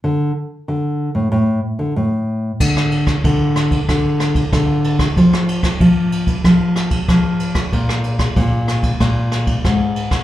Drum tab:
CC |----------------|x---------------|----------------|----------------|
RD |----------------|--xxx-xxx-xxx-xx|x-xxx-xxx-xxx-xx|x-xxx-xxx-xxx-xx|
SD |----------------|-r-r--r-r-r-r--r|-r-r----r-r-r--r|-r-r--r-r-r-r--r|
BD |----------------|o--oo--oo--oo--o|o--oo--oo--oo--o|o--oo--oo--oo--o|